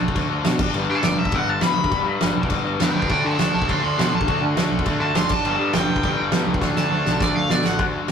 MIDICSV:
0, 0, Header, 1, 5, 480
1, 0, Start_track
1, 0, Tempo, 293112
1, 1227, Time_signature, 4, 2, 24, 8
1, 13289, End_track
2, 0, Start_track
2, 0, Title_t, "Overdriven electric guitar"
2, 0, Program_c, 0, 29
2, 0, Note_on_c, 0, 81, 115
2, 237, Note_off_c, 0, 81, 0
2, 1484, Note_on_c, 0, 69, 108
2, 1694, Note_off_c, 0, 69, 0
2, 1701, Note_on_c, 0, 74, 84
2, 1936, Note_off_c, 0, 74, 0
2, 1952, Note_on_c, 0, 76, 88
2, 2207, Note_off_c, 0, 76, 0
2, 2207, Note_on_c, 0, 78, 91
2, 2445, Note_off_c, 0, 78, 0
2, 2445, Note_on_c, 0, 81, 97
2, 2655, Note_off_c, 0, 81, 0
2, 2662, Note_on_c, 0, 83, 108
2, 4062, Note_off_c, 0, 83, 0
2, 4595, Note_on_c, 0, 71, 96
2, 4612, Note_on_c, 0, 79, 105
2, 4828, Note_off_c, 0, 79, 0
2, 4832, Note_off_c, 0, 71, 0
2, 4846, Note_on_c, 0, 71, 78
2, 4854, Note_on_c, 0, 79, 78
2, 5063, Note_off_c, 0, 71, 0
2, 5072, Note_off_c, 0, 79, 0
2, 5083, Note_on_c, 0, 74, 83
2, 5095, Note_on_c, 0, 79, 94
2, 5300, Note_off_c, 0, 74, 0
2, 5315, Note_off_c, 0, 79, 0
2, 5340, Note_on_c, 0, 72, 89
2, 5350, Note_on_c, 0, 81, 82
2, 5542, Note_off_c, 0, 72, 0
2, 5554, Note_off_c, 0, 81, 0
2, 5562, Note_on_c, 0, 72, 78
2, 5574, Note_on_c, 0, 81, 95
2, 5780, Note_off_c, 0, 72, 0
2, 5785, Note_off_c, 0, 81, 0
2, 5799, Note_on_c, 0, 72, 82
2, 5812, Note_on_c, 0, 81, 80
2, 6020, Note_off_c, 0, 72, 0
2, 6048, Note_off_c, 0, 81, 0
2, 6048, Note_on_c, 0, 81, 85
2, 6051, Note_on_c, 0, 84, 85
2, 6247, Note_off_c, 0, 81, 0
2, 6262, Note_off_c, 0, 84, 0
2, 6267, Note_on_c, 0, 81, 85
2, 6282, Note_on_c, 0, 84, 99
2, 6492, Note_off_c, 0, 81, 0
2, 6509, Note_off_c, 0, 84, 0
2, 6538, Note_on_c, 0, 81, 85
2, 6548, Note_on_c, 0, 84, 83
2, 6750, Note_off_c, 0, 81, 0
2, 6761, Note_off_c, 0, 84, 0
2, 6791, Note_on_c, 0, 81, 98
2, 7238, Note_off_c, 0, 81, 0
2, 8213, Note_on_c, 0, 81, 106
2, 8436, Note_off_c, 0, 81, 0
2, 8468, Note_on_c, 0, 84, 98
2, 8693, Note_off_c, 0, 84, 0
2, 8693, Note_on_c, 0, 81, 99
2, 9381, Note_off_c, 0, 81, 0
2, 9401, Note_on_c, 0, 79, 100
2, 10792, Note_off_c, 0, 79, 0
2, 11107, Note_on_c, 0, 81, 118
2, 11787, Note_off_c, 0, 81, 0
2, 11832, Note_on_c, 0, 74, 93
2, 12044, Note_off_c, 0, 74, 0
2, 12053, Note_on_c, 0, 77, 90
2, 12295, Note_off_c, 0, 77, 0
2, 12295, Note_on_c, 0, 74, 100
2, 12515, Note_off_c, 0, 74, 0
2, 12537, Note_on_c, 0, 78, 98
2, 12756, Note_off_c, 0, 78, 0
2, 13289, End_track
3, 0, Start_track
3, 0, Title_t, "Distorted electric guitar"
3, 0, Program_c, 1, 30
3, 0, Note_on_c, 1, 50, 85
3, 0, Note_on_c, 1, 57, 87
3, 0, Note_on_c, 1, 62, 105
3, 217, Note_off_c, 1, 50, 0
3, 229, Note_off_c, 1, 57, 0
3, 237, Note_on_c, 1, 50, 90
3, 248, Note_on_c, 1, 57, 95
3, 254, Note_off_c, 1, 62, 0
3, 261, Note_on_c, 1, 62, 107
3, 695, Note_off_c, 1, 62, 0
3, 699, Note_off_c, 1, 57, 0
3, 702, Note_on_c, 1, 62, 118
3, 704, Note_off_c, 1, 50, 0
3, 719, Note_on_c, 1, 57, 100
3, 723, Note_on_c, 1, 50, 90
3, 958, Note_off_c, 1, 57, 0
3, 960, Note_off_c, 1, 50, 0
3, 1194, Note_on_c, 1, 43, 91
3, 1204, Note_on_c, 1, 50, 98
3, 1220, Note_on_c, 1, 55, 104
3, 1663, Note_off_c, 1, 55, 0
3, 1664, Note_off_c, 1, 50, 0
3, 1669, Note_on_c, 1, 55, 109
3, 1681, Note_off_c, 1, 43, 0
3, 1684, Note_on_c, 1, 50, 97
3, 1687, Note_on_c, 1, 43, 82
3, 2139, Note_off_c, 1, 43, 0
3, 2147, Note_off_c, 1, 50, 0
3, 2159, Note_off_c, 1, 55, 0
3, 2159, Note_on_c, 1, 43, 87
3, 2167, Note_on_c, 1, 50, 93
3, 2178, Note_on_c, 1, 55, 93
3, 2619, Note_off_c, 1, 55, 0
3, 2626, Note_off_c, 1, 50, 0
3, 2632, Note_off_c, 1, 43, 0
3, 2638, Note_on_c, 1, 55, 105
3, 2646, Note_on_c, 1, 50, 100
3, 2652, Note_on_c, 1, 43, 88
3, 3099, Note_off_c, 1, 43, 0
3, 3113, Note_off_c, 1, 50, 0
3, 3118, Note_on_c, 1, 43, 93
3, 3119, Note_off_c, 1, 55, 0
3, 3133, Note_on_c, 1, 50, 93
3, 3139, Note_on_c, 1, 55, 105
3, 3585, Note_off_c, 1, 55, 0
3, 3592, Note_off_c, 1, 50, 0
3, 3600, Note_off_c, 1, 43, 0
3, 3605, Note_on_c, 1, 55, 99
3, 3612, Note_on_c, 1, 50, 95
3, 3619, Note_on_c, 1, 43, 79
3, 4079, Note_off_c, 1, 43, 0
3, 4088, Note_off_c, 1, 50, 0
3, 4095, Note_off_c, 1, 55, 0
3, 4099, Note_on_c, 1, 43, 92
3, 4108, Note_on_c, 1, 50, 90
3, 4114, Note_on_c, 1, 55, 95
3, 4551, Note_off_c, 1, 55, 0
3, 4569, Note_off_c, 1, 50, 0
3, 4571, Note_on_c, 1, 55, 104
3, 4581, Note_off_c, 1, 43, 0
3, 4589, Note_on_c, 1, 50, 100
3, 4601, Note_on_c, 1, 43, 86
3, 5046, Note_off_c, 1, 55, 0
3, 5048, Note_off_c, 1, 50, 0
3, 5061, Note_off_c, 1, 43, 0
3, 5067, Note_on_c, 1, 50, 93
3, 5078, Note_on_c, 1, 57, 101
3, 5081, Note_off_c, 1, 62, 0
3, 5088, Note_on_c, 1, 62, 110
3, 5542, Note_off_c, 1, 57, 0
3, 5546, Note_off_c, 1, 62, 0
3, 5553, Note_on_c, 1, 62, 93
3, 5562, Note_on_c, 1, 57, 98
3, 5564, Note_off_c, 1, 50, 0
3, 5570, Note_on_c, 1, 50, 88
3, 6012, Note_off_c, 1, 50, 0
3, 6024, Note_off_c, 1, 57, 0
3, 6032, Note_on_c, 1, 50, 83
3, 6043, Note_on_c, 1, 57, 99
3, 6049, Note_off_c, 1, 62, 0
3, 6056, Note_on_c, 1, 62, 93
3, 6499, Note_off_c, 1, 57, 0
3, 6505, Note_off_c, 1, 62, 0
3, 6511, Note_on_c, 1, 62, 111
3, 6512, Note_off_c, 1, 50, 0
3, 6519, Note_on_c, 1, 57, 101
3, 6532, Note_on_c, 1, 50, 86
3, 6974, Note_off_c, 1, 50, 0
3, 6983, Note_off_c, 1, 57, 0
3, 6993, Note_on_c, 1, 50, 97
3, 7002, Note_on_c, 1, 57, 110
3, 7011, Note_off_c, 1, 62, 0
3, 7017, Note_on_c, 1, 62, 113
3, 7474, Note_off_c, 1, 57, 0
3, 7476, Note_off_c, 1, 62, 0
3, 7483, Note_on_c, 1, 62, 97
3, 7486, Note_off_c, 1, 50, 0
3, 7494, Note_on_c, 1, 57, 93
3, 7506, Note_on_c, 1, 50, 81
3, 7931, Note_off_c, 1, 50, 0
3, 7939, Note_off_c, 1, 57, 0
3, 7951, Note_on_c, 1, 50, 92
3, 7958, Note_on_c, 1, 57, 94
3, 7966, Note_off_c, 1, 62, 0
3, 7972, Note_on_c, 1, 62, 92
3, 8422, Note_off_c, 1, 62, 0
3, 8425, Note_off_c, 1, 57, 0
3, 8428, Note_off_c, 1, 50, 0
3, 8428, Note_on_c, 1, 62, 119
3, 8445, Note_on_c, 1, 57, 111
3, 8447, Note_on_c, 1, 50, 86
3, 8664, Note_off_c, 1, 57, 0
3, 8666, Note_off_c, 1, 50, 0
3, 8907, Note_on_c, 1, 43, 98
3, 8918, Note_on_c, 1, 50, 100
3, 8931, Note_on_c, 1, 55, 109
3, 9372, Note_off_c, 1, 55, 0
3, 9386, Note_off_c, 1, 50, 0
3, 9391, Note_on_c, 1, 55, 101
3, 9393, Note_off_c, 1, 43, 0
3, 9406, Note_on_c, 1, 50, 97
3, 9412, Note_on_c, 1, 43, 79
3, 9838, Note_off_c, 1, 43, 0
3, 9853, Note_off_c, 1, 50, 0
3, 9858, Note_on_c, 1, 43, 83
3, 9862, Note_off_c, 1, 55, 0
3, 9872, Note_on_c, 1, 50, 88
3, 9882, Note_on_c, 1, 55, 107
3, 10316, Note_off_c, 1, 55, 0
3, 10329, Note_off_c, 1, 50, 0
3, 10336, Note_on_c, 1, 55, 118
3, 10342, Note_off_c, 1, 43, 0
3, 10348, Note_on_c, 1, 50, 105
3, 10361, Note_on_c, 1, 43, 91
3, 10794, Note_off_c, 1, 50, 0
3, 10809, Note_off_c, 1, 55, 0
3, 10814, Note_on_c, 1, 50, 92
3, 10822, Note_off_c, 1, 43, 0
3, 10823, Note_off_c, 1, 62, 0
3, 10825, Note_on_c, 1, 57, 99
3, 10830, Note_on_c, 1, 62, 110
3, 11283, Note_off_c, 1, 62, 0
3, 11296, Note_off_c, 1, 57, 0
3, 11302, Note_on_c, 1, 62, 104
3, 11306, Note_off_c, 1, 50, 0
3, 11316, Note_on_c, 1, 57, 92
3, 11326, Note_on_c, 1, 50, 85
3, 11759, Note_off_c, 1, 50, 0
3, 11767, Note_off_c, 1, 57, 0
3, 11775, Note_off_c, 1, 62, 0
3, 11778, Note_on_c, 1, 50, 86
3, 11786, Note_on_c, 1, 57, 90
3, 11794, Note_on_c, 1, 62, 90
3, 12239, Note_off_c, 1, 62, 0
3, 12250, Note_off_c, 1, 57, 0
3, 12259, Note_on_c, 1, 62, 116
3, 12261, Note_off_c, 1, 50, 0
3, 12269, Note_on_c, 1, 57, 108
3, 12281, Note_on_c, 1, 50, 100
3, 12722, Note_off_c, 1, 50, 0
3, 12730, Note_off_c, 1, 62, 0
3, 12735, Note_off_c, 1, 57, 0
3, 12742, Note_on_c, 1, 50, 87
3, 12752, Note_on_c, 1, 57, 100
3, 12761, Note_on_c, 1, 62, 96
3, 13208, Note_off_c, 1, 50, 0
3, 13216, Note_off_c, 1, 57, 0
3, 13221, Note_off_c, 1, 62, 0
3, 13227, Note_on_c, 1, 50, 78
3, 13238, Note_on_c, 1, 57, 88
3, 13289, Note_off_c, 1, 50, 0
3, 13289, Note_off_c, 1, 57, 0
3, 13289, End_track
4, 0, Start_track
4, 0, Title_t, "Picked electric bass"
4, 0, Program_c, 2, 34
4, 15, Note_on_c, 2, 35, 94
4, 197, Note_off_c, 2, 35, 0
4, 251, Note_on_c, 2, 38, 96
4, 435, Note_off_c, 2, 38, 0
4, 495, Note_on_c, 2, 38, 96
4, 677, Note_off_c, 2, 38, 0
4, 739, Note_on_c, 2, 47, 91
4, 968, Note_on_c, 2, 31, 96
4, 992, Note_off_c, 2, 47, 0
4, 1153, Note_off_c, 2, 31, 0
4, 1213, Note_on_c, 2, 31, 98
4, 1396, Note_off_c, 2, 31, 0
4, 1467, Note_on_c, 2, 43, 91
4, 1645, Note_off_c, 2, 43, 0
4, 1696, Note_on_c, 2, 31, 104
4, 1878, Note_off_c, 2, 31, 0
4, 1939, Note_on_c, 2, 28, 92
4, 2120, Note_off_c, 2, 28, 0
4, 2166, Note_on_c, 2, 31, 103
4, 2352, Note_off_c, 2, 31, 0
4, 2412, Note_on_c, 2, 31, 93
4, 2595, Note_off_c, 2, 31, 0
4, 2656, Note_on_c, 2, 40, 92
4, 2838, Note_off_c, 2, 40, 0
4, 2900, Note_on_c, 2, 38, 95
4, 3081, Note_off_c, 2, 38, 0
4, 3138, Note_on_c, 2, 31, 101
4, 3319, Note_off_c, 2, 31, 0
4, 3361, Note_on_c, 2, 43, 95
4, 3549, Note_off_c, 2, 43, 0
4, 3619, Note_on_c, 2, 31, 102
4, 3800, Note_off_c, 2, 31, 0
4, 3864, Note_on_c, 2, 28, 94
4, 4044, Note_off_c, 2, 28, 0
4, 4103, Note_on_c, 2, 31, 99
4, 4283, Note_off_c, 2, 31, 0
4, 4319, Note_on_c, 2, 31, 101
4, 4508, Note_off_c, 2, 31, 0
4, 4572, Note_on_c, 2, 40, 92
4, 4756, Note_off_c, 2, 40, 0
4, 4817, Note_on_c, 2, 38, 95
4, 4999, Note_off_c, 2, 38, 0
4, 5076, Note_on_c, 2, 38, 98
4, 5252, Note_off_c, 2, 38, 0
4, 5317, Note_on_c, 2, 50, 100
4, 5493, Note_off_c, 2, 50, 0
4, 5542, Note_on_c, 2, 38, 102
4, 5723, Note_off_c, 2, 38, 0
4, 5806, Note_on_c, 2, 35, 95
4, 5979, Note_off_c, 2, 35, 0
4, 6047, Note_on_c, 2, 38, 100
4, 6219, Note_off_c, 2, 38, 0
4, 6272, Note_on_c, 2, 38, 90
4, 6450, Note_off_c, 2, 38, 0
4, 6526, Note_on_c, 2, 47, 94
4, 6699, Note_off_c, 2, 47, 0
4, 6762, Note_on_c, 2, 33, 99
4, 6937, Note_off_c, 2, 33, 0
4, 7006, Note_on_c, 2, 38, 95
4, 7179, Note_off_c, 2, 38, 0
4, 7220, Note_on_c, 2, 50, 96
4, 7403, Note_off_c, 2, 50, 0
4, 7459, Note_on_c, 2, 38, 106
4, 7642, Note_off_c, 2, 38, 0
4, 7706, Note_on_c, 2, 35, 98
4, 7886, Note_off_c, 2, 35, 0
4, 7964, Note_on_c, 2, 38, 99
4, 8138, Note_off_c, 2, 38, 0
4, 8183, Note_on_c, 2, 38, 100
4, 8365, Note_off_c, 2, 38, 0
4, 8409, Note_on_c, 2, 30, 94
4, 8596, Note_off_c, 2, 30, 0
4, 8678, Note_on_c, 2, 31, 95
4, 8854, Note_off_c, 2, 31, 0
4, 8914, Note_on_c, 2, 31, 98
4, 9092, Note_off_c, 2, 31, 0
4, 9154, Note_on_c, 2, 43, 94
4, 9331, Note_off_c, 2, 43, 0
4, 9393, Note_on_c, 2, 31, 102
4, 9571, Note_off_c, 2, 31, 0
4, 9628, Note_on_c, 2, 28, 93
4, 9807, Note_off_c, 2, 28, 0
4, 9884, Note_on_c, 2, 31, 98
4, 10058, Note_off_c, 2, 31, 0
4, 10134, Note_on_c, 2, 31, 98
4, 10304, Note_off_c, 2, 31, 0
4, 10363, Note_on_c, 2, 40, 101
4, 10537, Note_off_c, 2, 40, 0
4, 10597, Note_on_c, 2, 37, 98
4, 10835, Note_off_c, 2, 37, 0
4, 10835, Note_on_c, 2, 38, 99
4, 11012, Note_off_c, 2, 38, 0
4, 11075, Note_on_c, 2, 50, 100
4, 11251, Note_off_c, 2, 50, 0
4, 11309, Note_on_c, 2, 38, 105
4, 11487, Note_off_c, 2, 38, 0
4, 11561, Note_on_c, 2, 35, 96
4, 11735, Note_off_c, 2, 35, 0
4, 11797, Note_on_c, 2, 38, 95
4, 11972, Note_off_c, 2, 38, 0
4, 12055, Note_on_c, 2, 38, 90
4, 12224, Note_off_c, 2, 38, 0
4, 12293, Note_on_c, 2, 47, 93
4, 12462, Note_off_c, 2, 47, 0
4, 12523, Note_on_c, 2, 33, 93
4, 12754, Note_off_c, 2, 33, 0
4, 12754, Note_on_c, 2, 38, 92
4, 13088, Note_off_c, 2, 38, 0
4, 13289, End_track
5, 0, Start_track
5, 0, Title_t, "Drums"
5, 134, Note_on_c, 9, 36, 88
5, 258, Note_off_c, 9, 36, 0
5, 258, Note_on_c, 9, 36, 98
5, 259, Note_on_c, 9, 49, 70
5, 422, Note_off_c, 9, 36, 0
5, 422, Note_off_c, 9, 49, 0
5, 728, Note_on_c, 9, 49, 69
5, 733, Note_on_c, 9, 38, 126
5, 892, Note_off_c, 9, 49, 0
5, 897, Note_off_c, 9, 38, 0
5, 967, Note_on_c, 9, 49, 119
5, 968, Note_on_c, 9, 36, 114
5, 1130, Note_off_c, 9, 49, 0
5, 1132, Note_off_c, 9, 36, 0
5, 1210, Note_on_c, 9, 49, 65
5, 1374, Note_off_c, 9, 49, 0
5, 1681, Note_on_c, 9, 49, 72
5, 1686, Note_on_c, 9, 38, 122
5, 1845, Note_off_c, 9, 49, 0
5, 1850, Note_off_c, 9, 38, 0
5, 2051, Note_on_c, 9, 36, 91
5, 2156, Note_on_c, 9, 49, 66
5, 2167, Note_off_c, 9, 36, 0
5, 2167, Note_on_c, 9, 36, 107
5, 2320, Note_off_c, 9, 49, 0
5, 2331, Note_off_c, 9, 36, 0
5, 2638, Note_on_c, 9, 49, 67
5, 2643, Note_on_c, 9, 38, 120
5, 2802, Note_off_c, 9, 49, 0
5, 2807, Note_off_c, 9, 38, 0
5, 3016, Note_on_c, 9, 36, 97
5, 3139, Note_off_c, 9, 36, 0
5, 3139, Note_on_c, 9, 36, 104
5, 3144, Note_on_c, 9, 49, 68
5, 3303, Note_off_c, 9, 36, 0
5, 3308, Note_off_c, 9, 49, 0
5, 3613, Note_on_c, 9, 49, 74
5, 3618, Note_on_c, 9, 38, 123
5, 3777, Note_off_c, 9, 49, 0
5, 3782, Note_off_c, 9, 38, 0
5, 3982, Note_on_c, 9, 36, 84
5, 4089, Note_on_c, 9, 49, 75
5, 4100, Note_off_c, 9, 36, 0
5, 4100, Note_on_c, 9, 36, 108
5, 4252, Note_off_c, 9, 49, 0
5, 4264, Note_off_c, 9, 36, 0
5, 4583, Note_on_c, 9, 49, 74
5, 4588, Note_on_c, 9, 38, 117
5, 4746, Note_off_c, 9, 49, 0
5, 4751, Note_off_c, 9, 38, 0
5, 4950, Note_on_c, 9, 36, 92
5, 5063, Note_on_c, 9, 49, 65
5, 5073, Note_off_c, 9, 36, 0
5, 5073, Note_on_c, 9, 36, 99
5, 5227, Note_off_c, 9, 49, 0
5, 5237, Note_off_c, 9, 36, 0
5, 5550, Note_on_c, 9, 49, 68
5, 5555, Note_on_c, 9, 38, 124
5, 5714, Note_off_c, 9, 49, 0
5, 5718, Note_off_c, 9, 38, 0
5, 5923, Note_on_c, 9, 36, 92
5, 6046, Note_off_c, 9, 36, 0
5, 6046, Note_on_c, 9, 36, 98
5, 6053, Note_on_c, 9, 49, 67
5, 6209, Note_off_c, 9, 36, 0
5, 6217, Note_off_c, 9, 49, 0
5, 6536, Note_on_c, 9, 49, 70
5, 6541, Note_on_c, 9, 38, 127
5, 6700, Note_off_c, 9, 49, 0
5, 6705, Note_off_c, 9, 38, 0
5, 6891, Note_on_c, 9, 36, 97
5, 7010, Note_off_c, 9, 36, 0
5, 7010, Note_on_c, 9, 36, 104
5, 7012, Note_on_c, 9, 49, 66
5, 7174, Note_off_c, 9, 36, 0
5, 7176, Note_off_c, 9, 49, 0
5, 7482, Note_on_c, 9, 49, 73
5, 7487, Note_on_c, 9, 38, 122
5, 7646, Note_off_c, 9, 49, 0
5, 7651, Note_off_c, 9, 38, 0
5, 7843, Note_on_c, 9, 36, 91
5, 7952, Note_on_c, 9, 49, 73
5, 7963, Note_off_c, 9, 36, 0
5, 7963, Note_on_c, 9, 36, 108
5, 8115, Note_off_c, 9, 49, 0
5, 8127, Note_off_c, 9, 36, 0
5, 8436, Note_on_c, 9, 49, 76
5, 8441, Note_on_c, 9, 38, 127
5, 8600, Note_off_c, 9, 49, 0
5, 8605, Note_off_c, 9, 38, 0
5, 8665, Note_on_c, 9, 49, 110
5, 8681, Note_on_c, 9, 36, 109
5, 8829, Note_off_c, 9, 49, 0
5, 8845, Note_off_c, 9, 36, 0
5, 8923, Note_on_c, 9, 49, 75
5, 9086, Note_off_c, 9, 49, 0
5, 9388, Note_on_c, 9, 49, 73
5, 9393, Note_on_c, 9, 38, 125
5, 9551, Note_off_c, 9, 49, 0
5, 9556, Note_off_c, 9, 38, 0
5, 9760, Note_on_c, 9, 36, 89
5, 9882, Note_off_c, 9, 36, 0
5, 9882, Note_on_c, 9, 36, 108
5, 9886, Note_on_c, 9, 49, 69
5, 10046, Note_off_c, 9, 36, 0
5, 10050, Note_off_c, 9, 49, 0
5, 10345, Note_on_c, 9, 49, 69
5, 10350, Note_on_c, 9, 38, 124
5, 10509, Note_off_c, 9, 49, 0
5, 10514, Note_off_c, 9, 38, 0
5, 10715, Note_on_c, 9, 36, 97
5, 10827, Note_on_c, 9, 38, 66
5, 10833, Note_off_c, 9, 36, 0
5, 10833, Note_on_c, 9, 36, 98
5, 10991, Note_off_c, 9, 38, 0
5, 10997, Note_off_c, 9, 36, 0
5, 11074, Note_on_c, 9, 38, 70
5, 11238, Note_off_c, 9, 38, 0
5, 11559, Note_on_c, 9, 38, 77
5, 11722, Note_off_c, 9, 38, 0
5, 11799, Note_on_c, 9, 36, 123
5, 11804, Note_on_c, 9, 38, 100
5, 11962, Note_off_c, 9, 36, 0
5, 11968, Note_off_c, 9, 38, 0
5, 12284, Note_on_c, 9, 38, 112
5, 12448, Note_off_c, 9, 38, 0
5, 12521, Note_on_c, 9, 38, 99
5, 12685, Note_off_c, 9, 38, 0
5, 12755, Note_on_c, 9, 49, 61
5, 12758, Note_on_c, 9, 36, 116
5, 12919, Note_off_c, 9, 49, 0
5, 12922, Note_off_c, 9, 36, 0
5, 13234, Note_on_c, 9, 49, 65
5, 13239, Note_on_c, 9, 38, 113
5, 13289, Note_off_c, 9, 38, 0
5, 13289, Note_off_c, 9, 49, 0
5, 13289, End_track
0, 0, End_of_file